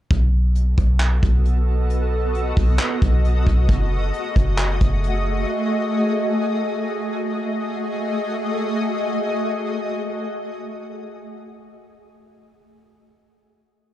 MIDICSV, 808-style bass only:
0, 0, Header, 1, 2, 480
1, 0, Start_track
1, 0, Tempo, 447761
1, 114, Time_signature, 4, 2, 24, 8
1, 14940, End_track
2, 0, Start_track
2, 0, Title_t, "808-style bass"
2, 0, Program_c, 0, 38
2, 114, Note_on_c, 0, 35, 118
2, 805, Note_off_c, 0, 35, 0
2, 833, Note_on_c, 0, 35, 108
2, 1294, Note_off_c, 0, 35, 0
2, 1317, Note_on_c, 0, 35, 99
2, 2712, Note_off_c, 0, 35, 0
2, 2754, Note_on_c, 0, 35, 113
2, 2984, Note_off_c, 0, 35, 0
2, 3238, Note_on_c, 0, 35, 103
2, 3697, Note_off_c, 0, 35, 0
2, 3715, Note_on_c, 0, 35, 104
2, 3945, Note_off_c, 0, 35, 0
2, 3955, Note_on_c, 0, 30, 111
2, 4415, Note_off_c, 0, 30, 0
2, 4674, Note_on_c, 0, 30, 110
2, 5135, Note_off_c, 0, 30, 0
2, 5157, Note_on_c, 0, 30, 103
2, 5847, Note_off_c, 0, 30, 0
2, 14940, End_track
0, 0, End_of_file